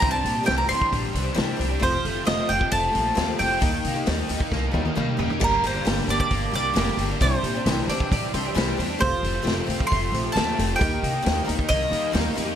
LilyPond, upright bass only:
\new Staff \with { instrumentName = "Upright bass" } { \clef bass \time 4/4 \key g \minor \tempo 4 = 134 c,8 bes,8 c,8 c,8 bes,,8 c,8 c,8 c,8 | f,,8 f,,8 f,,8 f,,8 f,,8 bes,,8 ees,8 f,,8 | ees,8 c8 ees,8 ees,8 c,8 ees,8 ees,8 fis,8 | g,,8 g,,8 g,,8 g,,8 g,,8 c,8 f,,8 g,,8 |
c,8 bes,8 c,8 c,8 bes,,8 c,8 c,8 e,8 | f,,8 f,,8 f,,8 f,,8 f,,8 bes,,8 ees,8 f,,8 | ees,8 c8 ees,8 ees,8 c,8 ees,8 ees,8 f,8 | }